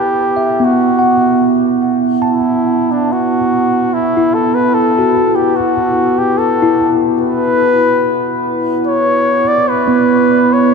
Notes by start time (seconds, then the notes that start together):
Already playing: B3 E4 G4
0.36 E5
0.60 B3 F#4
0.99 F#5
2.22 A5
2.30 E4
2.91 D4
3.12 F#4
3.93 E4
4.17 E4
4.34 A4
4.54 B4
4.74 A4
4.99 F#4
5.35 G4
5.56 F#4
6.18 G4
6.38 A4
6.62 E4
7.21 B4
8.86 C#5
9.48 D5
9.69 B4
9.88 B3
10.53 C#5